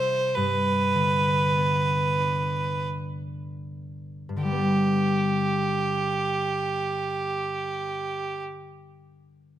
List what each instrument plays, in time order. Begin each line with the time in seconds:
Already playing: harp C3 G3 E4 G4, fiddle C5
0.35 harp G2, fiddle B4
0.95 harp D3
1.56 harp B3
2.20 harp D4
4.29 harp G2
4.36 harp D3
4.43 harp G3, fiddle G4
4.52 harp B3
4.59 harp D4